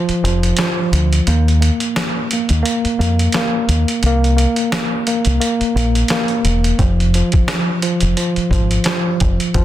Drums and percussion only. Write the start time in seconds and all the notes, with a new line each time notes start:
0.09 closed hi-hat
0.25 closed hi-hat
0.43 closed hi-hat
0.57 snare, closed hi-hat
0.93 closed hi-hat
1.13 closed hi-hat
1.27 closed hi-hat
1.48 closed hi-hat
1.62 closed hi-hat
1.80 closed hi-hat
1.96 snare, closed hi-hat
2.31 closed hi-hat
2.49 closed hi-hat
2.66 closed hi-hat
2.85 closed hi-hat
3.01 closed hi-hat
3.19 closed hi-hat
3.32 snare, closed hi-hat
3.69 closed hi-hat
3.88 closed hi-hat
4.03 closed hi-hat
4.24 closed hi-hat
4.38 closed hi-hat
4.56 closed hi-hat
4.72 snare, closed hi-hat
5.07 closed hi-hat
5.25 closed hi-hat
5.41 closed hi-hat
5.61 closed hi-hat
5.77 closed hi-hat
5.95 closed hi-hat
6.08 snare, closed hi-hat
6.28 closed hi-hat
6.45 closed hi-hat
6.64 closed hi-hat
6.79 kick, closed hi-hat
7.00 closed hi-hat
7.14 closed hi-hat
7.32 kick, closed hi-hat
7.48 snare, closed hi-hat
7.82 closed hi-hat
8.01 closed hi-hat
8.17 closed hi-hat
8.36 closed hi-hat
8.51 kick, closed hi-hat
8.71 closed hi-hat
8.84 snare, closed hi-hat
9.20 kick, closed hi-hat
9.40 closed hi-hat
9.54 kick, closed hi-hat